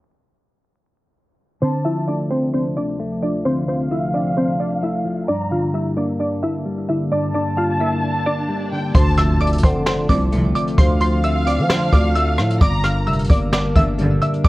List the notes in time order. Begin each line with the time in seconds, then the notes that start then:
1.62 D2 C3 D3 F3 C4 C5 A5
1.85 F3 E4 E5
2.08 A3 D4 D5
2.30 C4 C5
2.53 C4 D4 C5
2.77 D4 D5
2.99 A3
3.22 F3 D4 D5
3.45 D3 C4 C5 F5
3.67 F3 C4 C5
3.91 A3 E4 E5
4.13 C4 D4 D5
4.37 C4 D4 C5
4.60 D4 D5
4.83 A3 E4 E5
5.05 F3
5.28 G2 D3 A#3 D4 D5 A#5
5.51 D3 F4 F5
5.74 G3 E4 E5
5.97 A#3 D4 D5
6.19 D4 D5
6.43 E4 E5
6.65 G3
6.89 D3 E4 E5
7.11 G2 D4 D5 A5, swell
7.34 D3 D4 D5
7.57 G3 F4 F5
7.80 A#3 E4 E5
8.03 D4
8.26 D4 D5
8.49 G3
8.72 D3 G5
8.95 D2 D3 C4 F4 C5 A5 C6, kick, closed hi-hat, impact
9.17 F3 E5 E6, cross-stick, closed hi-hat
9.40 A3 D5 D6, closed hi-hat
9.47 closed hi-hat
9.53 closed hi-hat
9.58 closed hi-hat
9.63 D3 C4 C5 C6, kick, closed hi-hat
9.86 D4 C5 C6, snare
10.09 C2 D2 C3 F3 D5 D6, kick, closed hi-hat
10.32 D2 C3 F3 A3, closed hi-hat
10.55 F3 D5 D6, closed hi-hat
10.67 closed hi-hat
10.78 D2 D3 C5 F5 C6, kick, closed hi-hat
11.00 F3 C5 C6, closed hi-hat
11.24 A3 E5 E6, closed hi-hat
11.46 C4 D5 D6, closed hi-hat
11.59 F3
11.69 D4 C5 C6, snare
11.92 D2 D5 D6, kick, closed hi-hat
12.15 A3 E5 E6, closed hi-hat
12.38 A2 F3, cross-stick, closed hi-hat
12.50 closed hi-hat
12.61 G1 G2 G3 D4 A#4 D5 A#5 D6, kick, closed hi-hat
12.84 D3 F5 F6, cross-stick, closed hi-hat
13.07 F1 G3 E5 E6, closed hi-hat
13.13 closed hi-hat
13.19 closed hi-hat
13.24 closed hi-hat
13.29 G1 A#3 D5 D6, kick, closed hi-hat
13.52 D4 D5 D6, snare
13.76 G1 A#1 G2 D3 E5 E6, kick, closed hi-hat
13.98 A#1 G2 D3 G3, closed hi-hat
14.21 D3 E5 E6, closed hi-hat
14.34 closed hi-hat
14.44 G1 G2 D5 A5 D6, kick, closed hi-hat